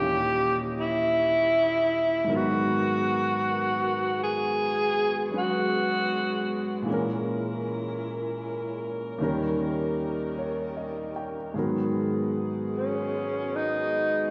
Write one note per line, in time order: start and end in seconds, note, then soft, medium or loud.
0.00 2.25 D#2 soft
0.00 2.26 A#2 soft
0.00 2.28 E3 soft
0.00 2.12 G3 medium
0.00 2.29 C#4 soft
0.00 2.12 E4 medium
0.00 0.62 G4 loud
0.00 2.30 G4 medium
0.00 2.12 C#5 medium
0.00 2.12 D#5 medium
0.79 2.37 E4 medium
2.25 6.86 G#2 soft
2.25 6.87 D#3 soft
2.25 5.29 F#3 soft
2.29 9.02 G#3 medium
2.29 6.84 B3 medium
2.29 6.88 B3 soft
2.29 6.85 F#4 medium
2.29 4.56 A#4 medium
2.29 6.88 A#4 medium
2.36 4.22 F#4 medium
4.23 5.31 G#4 medium
4.62 6.87 G#4 medium
5.30 6.86 F#3 soft
5.30 6.86 G#3 soft
5.30 6.88 C#4 soft
5.30 6.88 B4 soft
5.38 6.86 F#4 medium
6.82 9.17 A#2 medium
6.82 9.18 E3 medium
6.87 9.19 G#3 soft
6.87 11.50 C#4 medium
6.87 9.20 C#4 soft
6.87 9.02 E4 medium
6.87 11.51 A#4 medium
6.94 9.22 A#4 medium
9.18 11.53 D#2 medium
9.18 11.54 D#3 medium
9.18 11.52 G3 medium
9.18 11.55 G3 medium
9.18 11.55 C#4 medium
9.18 11.51 D#4 medium
9.24 11.56 A#4 medium
10.39 11.11 C#5 soft
10.77 11.37 D#5 soft
11.16 11.76 G5 soft
11.54 14.31 G#2 soft
11.54 14.31 D#3 soft
11.54 14.31 F#3 soft
11.54 14.31 G#3 medium
11.54 14.31 B3 medium
11.54 14.31 B3 soft
11.54 14.31 F#4 medium
11.54 14.31 G#4 medium
11.59 14.31 A#4 soft
12.78 13.57 C#4 medium
13.56 14.31 D#4 medium